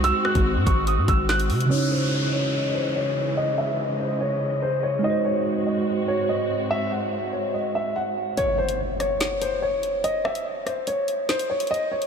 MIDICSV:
0, 0, Header, 1, 8, 480
1, 0, Start_track
1, 0, Key_signature, 4, "minor"
1, 0, Tempo, 416667
1, 47, Time_signature, 4, 2, 24, 8
1, 13902, End_track
2, 0, Start_track
2, 0, Title_t, "Grand piano"
2, 0, Program_c, 0, 0
2, 46, Note_on_c, 0, 88, 115
2, 272, Note_off_c, 0, 88, 0
2, 286, Note_on_c, 0, 90, 78
2, 512, Note_off_c, 0, 90, 0
2, 765, Note_on_c, 0, 85, 78
2, 992, Note_off_c, 0, 85, 0
2, 1005, Note_on_c, 0, 87, 77
2, 1232, Note_off_c, 0, 87, 0
2, 1250, Note_on_c, 0, 88, 89
2, 1474, Note_off_c, 0, 88, 0
2, 1487, Note_on_c, 0, 90, 86
2, 1938, Note_off_c, 0, 90, 0
2, 1966, Note_on_c, 0, 73, 96
2, 2192, Note_off_c, 0, 73, 0
2, 2208, Note_on_c, 0, 72, 83
2, 2433, Note_off_c, 0, 72, 0
2, 2689, Note_on_c, 0, 73, 81
2, 3140, Note_off_c, 0, 73, 0
2, 3168, Note_on_c, 0, 72, 71
2, 3394, Note_off_c, 0, 72, 0
2, 3409, Note_on_c, 0, 73, 77
2, 3859, Note_off_c, 0, 73, 0
2, 3886, Note_on_c, 0, 75, 97
2, 4112, Note_off_c, 0, 75, 0
2, 4125, Note_on_c, 0, 76, 79
2, 4352, Note_off_c, 0, 76, 0
2, 4606, Note_on_c, 0, 72, 66
2, 4832, Note_off_c, 0, 72, 0
2, 4849, Note_on_c, 0, 73, 84
2, 5299, Note_off_c, 0, 73, 0
2, 5326, Note_on_c, 0, 72, 88
2, 5552, Note_off_c, 0, 72, 0
2, 5565, Note_on_c, 0, 73, 81
2, 5792, Note_off_c, 0, 73, 0
2, 5808, Note_on_c, 0, 75, 101
2, 6033, Note_off_c, 0, 75, 0
2, 6047, Note_on_c, 0, 73, 80
2, 6273, Note_off_c, 0, 73, 0
2, 6527, Note_on_c, 0, 75, 72
2, 6978, Note_off_c, 0, 75, 0
2, 7007, Note_on_c, 0, 73, 88
2, 7233, Note_off_c, 0, 73, 0
2, 7247, Note_on_c, 0, 75, 80
2, 7698, Note_off_c, 0, 75, 0
2, 7726, Note_on_c, 0, 76, 110
2, 7952, Note_off_c, 0, 76, 0
2, 7966, Note_on_c, 0, 78, 76
2, 8192, Note_off_c, 0, 78, 0
2, 8445, Note_on_c, 0, 73, 74
2, 8672, Note_off_c, 0, 73, 0
2, 8685, Note_on_c, 0, 75, 73
2, 8912, Note_off_c, 0, 75, 0
2, 8930, Note_on_c, 0, 76, 83
2, 9155, Note_off_c, 0, 76, 0
2, 9169, Note_on_c, 0, 78, 80
2, 9619, Note_off_c, 0, 78, 0
2, 9648, Note_on_c, 0, 73, 105
2, 9873, Note_off_c, 0, 73, 0
2, 9888, Note_on_c, 0, 72, 87
2, 10113, Note_off_c, 0, 72, 0
2, 10369, Note_on_c, 0, 73, 85
2, 10819, Note_off_c, 0, 73, 0
2, 10848, Note_on_c, 0, 72, 80
2, 11073, Note_off_c, 0, 72, 0
2, 11088, Note_on_c, 0, 73, 83
2, 11539, Note_off_c, 0, 73, 0
2, 11567, Note_on_c, 0, 75, 101
2, 11793, Note_off_c, 0, 75, 0
2, 11806, Note_on_c, 0, 76, 84
2, 12032, Note_off_c, 0, 76, 0
2, 12285, Note_on_c, 0, 72, 70
2, 12512, Note_off_c, 0, 72, 0
2, 12528, Note_on_c, 0, 73, 88
2, 12979, Note_off_c, 0, 73, 0
2, 13006, Note_on_c, 0, 72, 90
2, 13232, Note_off_c, 0, 72, 0
2, 13245, Note_on_c, 0, 73, 81
2, 13472, Note_off_c, 0, 73, 0
2, 13487, Note_on_c, 0, 75, 103
2, 13713, Note_off_c, 0, 75, 0
2, 13727, Note_on_c, 0, 73, 88
2, 13902, Note_off_c, 0, 73, 0
2, 13902, End_track
3, 0, Start_track
3, 0, Title_t, "Tine electric piano"
3, 0, Program_c, 1, 4
3, 0, Control_c, 1, 64, 127
3, 0, Note_on_c, 1, 56, 70
3, 0, Note_on_c, 1, 63, 67
3, 0, Note_on_c, 1, 66, 64
3, 0, Note_on_c, 1, 72, 75
3, 1887, Note_off_c, 1, 56, 0
3, 1906, Note_on_c, 1, 49, 62
3, 1908, Note_off_c, 1, 63, 0
3, 1930, Note_off_c, 1, 66, 0
3, 1949, Note_on_c, 1, 61, 62
3, 1950, Note_off_c, 1, 72, 0
3, 1983, Control_c, 1, 64, 0
3, 1991, Note_on_c, 1, 63, 57
3, 2033, Note_on_c, 1, 64, 70
3, 2167, Control_c, 1, 64, 127
3, 5731, Note_off_c, 1, 49, 0
3, 5748, Note_on_c, 1, 56, 65
3, 5752, Note_off_c, 1, 61, 0
3, 5773, Note_off_c, 1, 63, 0
3, 5791, Note_on_c, 1, 63, 61
3, 5794, Note_off_c, 1, 64, 0
3, 5823, Control_c, 1, 64, 0
3, 5833, Note_on_c, 1, 66, 62
3, 5875, Note_on_c, 1, 72, 76
3, 6010, Control_c, 1, 64, 127
3, 9571, Note_off_c, 1, 56, 0
3, 9593, Note_off_c, 1, 63, 0
3, 9614, Note_off_c, 1, 66, 0
3, 9635, Note_off_c, 1, 72, 0
3, 9662, Control_c, 1, 64, 0
3, 13902, End_track
4, 0, Start_track
4, 0, Title_t, "String section"
4, 0, Program_c, 2, 48
4, 0, Note_on_c, 2, 56, 85
4, 0, Note_on_c, 2, 60, 77
4, 0, Note_on_c, 2, 66, 94
4, 1920, Note_off_c, 2, 56, 0
4, 1929, Note_off_c, 2, 60, 0
4, 1929, Note_off_c, 2, 66, 0
4, 1966, Note_on_c, 2, 49, 78
4, 1966, Note_on_c, 2, 52, 86
4, 1966, Note_on_c, 2, 56, 71
4, 1966, Note_on_c, 2, 75, 74
4, 5768, Note_off_c, 2, 49, 0
4, 5768, Note_off_c, 2, 52, 0
4, 5768, Note_off_c, 2, 75, 0
4, 5805, Note_on_c, 2, 44, 81
4, 5805, Note_on_c, 2, 60, 73
4, 5806, Note_on_c, 2, 66, 87
4, 9600, Note_off_c, 2, 56, 0
4, 9608, Note_off_c, 2, 44, 0
4, 9608, Note_off_c, 2, 60, 0
4, 9608, Note_off_c, 2, 66, 0
4, 13902, End_track
5, 0, Start_track
5, 0, Title_t, "808-style bass"
5, 0, Program_c, 3, 38
5, 0, Note_on_c, 3, 36, 99
5, 148, Note_off_c, 3, 36, 0
5, 406, Note_on_c, 3, 32, 103
5, 646, Note_on_c, 3, 44, 103
5, 664, Note_off_c, 3, 32, 0
5, 761, Note_off_c, 3, 44, 0
5, 767, Note_on_c, 3, 32, 109
5, 1127, Note_on_c, 3, 44, 104
5, 1144, Note_off_c, 3, 32, 0
5, 1241, Note_off_c, 3, 44, 0
5, 1246, Note_on_c, 3, 32, 107
5, 1727, Note_on_c, 3, 48, 101
5, 1744, Note_off_c, 3, 32, 0
5, 1955, Note_off_c, 3, 48, 0
5, 13902, End_track
6, 0, Start_track
6, 0, Title_t, "Downlifter"
6, 0, Program_c, 4, 103
6, 1967, Note_on_c, 4, 60, 77
6, 5807, Note_off_c, 4, 60, 0
6, 13902, End_track
7, 0, Start_track
7, 0, Title_t, "Impact"
7, 0, Program_c, 5, 103
7, 9647, Note_on_c, 5, 60, 82
7, 11567, Note_off_c, 5, 60, 0
7, 13902, End_track
8, 0, Start_track
8, 0, Title_t, "Drums"
8, 46, Note_on_c, 9, 42, 76
8, 161, Note_off_c, 9, 42, 0
8, 287, Note_on_c, 9, 37, 98
8, 402, Note_off_c, 9, 37, 0
8, 406, Note_on_c, 9, 42, 83
8, 407, Note_on_c, 9, 36, 94
8, 521, Note_off_c, 9, 42, 0
8, 522, Note_off_c, 9, 36, 0
8, 766, Note_on_c, 9, 36, 99
8, 769, Note_on_c, 9, 42, 84
8, 881, Note_off_c, 9, 36, 0
8, 884, Note_off_c, 9, 42, 0
8, 1003, Note_on_c, 9, 42, 83
8, 1118, Note_off_c, 9, 42, 0
8, 1246, Note_on_c, 9, 36, 102
8, 1246, Note_on_c, 9, 42, 81
8, 1361, Note_off_c, 9, 36, 0
8, 1361, Note_off_c, 9, 42, 0
8, 1487, Note_on_c, 9, 38, 117
8, 1603, Note_off_c, 9, 38, 0
8, 1608, Note_on_c, 9, 42, 82
8, 1723, Note_off_c, 9, 42, 0
8, 1725, Note_on_c, 9, 46, 58
8, 1840, Note_off_c, 9, 46, 0
8, 1849, Note_on_c, 9, 42, 91
8, 1964, Note_off_c, 9, 42, 0
8, 9647, Note_on_c, 9, 42, 72
8, 9762, Note_off_c, 9, 42, 0
8, 10006, Note_on_c, 9, 42, 77
8, 10121, Note_off_c, 9, 42, 0
8, 10368, Note_on_c, 9, 37, 68
8, 10370, Note_on_c, 9, 42, 84
8, 10484, Note_off_c, 9, 37, 0
8, 10485, Note_off_c, 9, 42, 0
8, 10604, Note_on_c, 9, 42, 83
8, 10608, Note_on_c, 9, 38, 114
8, 10719, Note_off_c, 9, 42, 0
8, 10723, Note_off_c, 9, 38, 0
8, 10846, Note_on_c, 9, 42, 79
8, 10962, Note_off_c, 9, 42, 0
8, 11326, Note_on_c, 9, 42, 73
8, 11442, Note_off_c, 9, 42, 0
8, 11567, Note_on_c, 9, 42, 73
8, 11682, Note_off_c, 9, 42, 0
8, 11808, Note_on_c, 9, 37, 99
8, 11923, Note_off_c, 9, 37, 0
8, 11926, Note_on_c, 9, 42, 77
8, 12041, Note_off_c, 9, 42, 0
8, 12286, Note_on_c, 9, 37, 68
8, 12288, Note_on_c, 9, 42, 84
8, 12402, Note_off_c, 9, 37, 0
8, 12403, Note_off_c, 9, 42, 0
8, 12522, Note_on_c, 9, 42, 83
8, 12638, Note_off_c, 9, 42, 0
8, 12765, Note_on_c, 9, 42, 77
8, 12880, Note_off_c, 9, 42, 0
8, 13006, Note_on_c, 9, 38, 114
8, 13122, Note_off_c, 9, 38, 0
8, 13126, Note_on_c, 9, 42, 81
8, 13241, Note_off_c, 9, 42, 0
8, 13365, Note_on_c, 9, 42, 90
8, 13445, Note_off_c, 9, 42, 0
8, 13445, Note_on_c, 9, 42, 73
8, 13525, Note_off_c, 9, 42, 0
8, 13525, Note_on_c, 9, 42, 54
8, 13640, Note_off_c, 9, 42, 0
8, 13844, Note_on_c, 9, 42, 78
8, 13902, Note_off_c, 9, 42, 0
8, 13902, End_track
0, 0, End_of_file